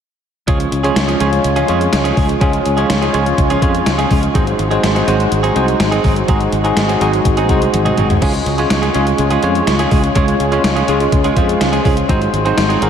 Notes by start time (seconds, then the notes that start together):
0.47 C#2 F3 G#3 C#4 F4 G#4 C#5, kick, closed hi-hat
0.60 muted clean electric guitar stroke, closed hi-hat
0.71 C#2, muted clean electric guitar stroke, closed hi-hat
0.83 F3 G#3 C#4 F4 G#4 C#5, closed hi-hat
0.96 C#2, muted clean electric guitar stroke, snare, closed hi-hat
1.08 F3 C#4 F4 G#4, closed hi-hat
1.20 C#2 F3 G#3 C#4 F4 G#4 C#5, closed hi-hat
1.32 muted clean electric guitar stroke, closed hi-hat
1.44 C#2, muted clean electric guitar stroke, closed hi-hat
1.56 F3 C#4 F4 G#4, closed hi-hat
1.68 F2 F3 G#3 C#4 F4 G#4 C#5, closed hi-hat
1.80 muted clean electric guitar stroke, closed hi-hat
1.93 C#2, muted clean electric guitar stroke, snare, closed hi-hat
2.04 F3 C#4 F4 G#4, closed hi-hat
2.17 C#2 F3 C#4 F4 G#4, kick, open hi-hat
2.29 muted clean electric guitar stroke, closed hi-hat
2.41 C#2 F3 G#3 C#4 F4 G#4, kick, closed hi-hat
2.53 muted clean electric guitar stroke, closed hi-hat
2.65 C#2, muted clean electric guitar stroke, closed hi-hat
2.77 F3 G#3 C#4 F4 G#4 C#5, closed hi-hat
2.89 C#2, muted clean electric guitar stroke, snare, closed hi-hat
3.02 F3 C#4 F4 G#4, closed hi-hat
3.13 C#2 F3 G#3 C#4 F4 G#4 C#5, closed hi-hat
3.26 muted clean electric guitar stroke, closed hi-hat
3.38 C#2, muted clean electric guitar stroke, kick, closed hi-hat
3.50 F3 C#4 F4 G#4, closed hi-hat
3.62 F2 F3 G#3 C#4 F4 G#4 C#5, kick, closed hi-hat
3.74 muted clean electric guitar stroke, closed hi-hat
3.86 C#2, muted clean electric guitar stroke, snare, closed hi-hat
3.98 F3 C#4 F4 G#4, closed hi-hat
4.10 C#2 F3 C#4 F4 G#4, kick, open hi-hat
4.22 muted clean electric guitar stroke, closed hi-hat
4.34 G#1 F#3 G#3 C4 D#4 F#4 G#4 C5, kick, closed hi-hat
4.47 muted clean electric guitar stroke, closed hi-hat
4.58 G#1, muted clean electric guitar stroke, closed hi-hat
4.71 F#3 G#3 C4 D#4 F#4 G#4 C5, closed hi-hat
4.83 G#1, muted clean electric guitar stroke, snare, closed hi-hat
4.95 F#3 C4 D#4 G#4, closed hi-hat
5.07 G#1 F#3 G#3 C4 D#4 F#4 G#4 C5, closed hi-hat
5.19 muted clean electric guitar stroke, closed hi-hat
5.31 G#1, muted clean electric guitar stroke, closed hi-hat
5.43 F#3 C4 D#4 G#4, closed hi-hat
5.55 C2 F#3 G#3 C4 D#4 F#4 G#4 C5, closed hi-hat
5.68 muted clean electric guitar stroke, closed hi-hat
5.80 G#1, muted clean electric guitar stroke, snare, closed hi-hat
5.91 F#3 C4 D#4 G#4, closed hi-hat
6.04 G#1 F#3 C4 D#4 G#4, kick, open hi-hat
6.16 muted clean electric guitar stroke, closed hi-hat
6.28 G#1 F#3 G#3 C4 D#4 F#4 G#4, kick, closed hi-hat
6.40 muted clean electric guitar stroke, closed hi-hat
6.52 G#1, muted clean electric guitar stroke, closed hi-hat
6.64 F#3 G#3 C4 D#4 F#4 G#4, closed hi-hat
6.76 G#1, muted clean electric guitar stroke, snare, closed hi-hat
6.88 F#3 C4 D#4 G#4, closed hi-hat
7.01 G#1 F#3 G#3 C4 D#4 F#4 G#4, closed hi-hat
7.13 muted clean electric guitar stroke, closed hi-hat
7.25 G#1, muted clean electric guitar stroke, kick, closed hi-hat
7.37 F#3 C4 D#4 G#4, closed hi-hat
7.49 C2 F#3 G#3 C4 D#4 F#4 G#4 C5, kick, closed hi-hat
7.62 muted clean electric guitar stroke, closed hi-hat
7.73 G#1 D#5, muted clean electric guitar stroke, closed hi-hat, high tom
7.85 F#3 C4 D#4 G#4, closed hi-hat, mid tom
7.98 G#1 F#3 C4 D#4 G#4 G#5, closed hi-hat, mid tom
8.09 muted clean electric guitar stroke, closed hi-hat, floor tom
8.22 C#2 G#3 C#4 F4 G#4 C#5, kick, crash
8.34 muted clean electric guitar stroke, closed hi-hat
8.46 C#2, muted clean electric guitar stroke, closed hi-hat
8.58 G#3 C#4 F4 G#4 C#5, closed hi-hat
8.70 C#2, snare, closed hi-hat
8.82 G#3 C#4 F4 G#4, closed hi-hat
8.94 C#2 G#3 C#4 F4 G#4 C#5, closed hi-hat
9.07 muted clean electric guitar stroke, closed hi-hat
9.18 C#2, muted clean electric guitar stroke, closed hi-hat
9.30 G#3 C#4 F4 G#4, closed hi-hat
9.42 F2 G#3 C#4 F4 G#4 C#5, closed hi-hat
9.55 muted clean electric guitar stroke, closed hi-hat
9.67 C#2, muted clean electric guitar stroke, snare, closed hi-hat
9.79 G#3 C#4 F4 G#4, closed hi-hat
9.91 C#2 G#3 C#4 F4 G#4, kick, open hi-hat
10.03 muted clean electric guitar stroke, closed hi-hat
10.15 C#2 G#3 C#4 F4 G#4 C#5, kick, closed hi-hat
10.27 muted clean electric guitar stroke, closed hi-hat
10.40 C#2, muted clean electric guitar stroke, closed hi-hat
10.51 G#3 C#4 F4 G#4 C#5, closed hi-hat
10.64 C#2, muted clean electric guitar stroke, snare, closed hi-hat
10.76 G#3 C#4 F4 G#4, closed hi-hat
10.88 C#2 G#3 C#4 F4 G#4, closed hi-hat
11.00 muted clean electric guitar stroke, closed hi-hat
11.12 C#2, muted clean electric guitar stroke, kick, closed hi-hat
11.24 G#3 C#4 F4 G#4, closed hi-hat
11.36 F2 G#3 C#4 F4 G#4 C5, kick, closed hi-hat
11.49 muted clean electric guitar stroke, closed hi-hat
11.61 C#2, muted clean electric guitar stroke, snare, closed hi-hat
11.72 G#3 C#4 F4 G#4, closed hi-hat
11.84 C#2 G#3 C#4 F4 G#4, kick, open hi-hat
11.97 muted clean electric guitar stroke, closed hi-hat
12.09 G#1 F#3 G#3 C4 D#4 F#4 G#4 C5, kick, closed hi-hat
12.21 muted clean electric guitar stroke, closed hi-hat
12.33 G#1, muted clean electric guitar stroke, closed hi-hat
12.45 F#3 G#3 C4 D#4 F#4 G#4 C5, closed hi-hat
12.57 G#1, muted clean electric guitar stroke, snare, closed hi-hat
12.69 F#3 C4 D#4 G#4, closed hi-hat
12.81 G#1 F#3 G#3 C4 D#4 F#4 G#4 A#4, closed hi-hat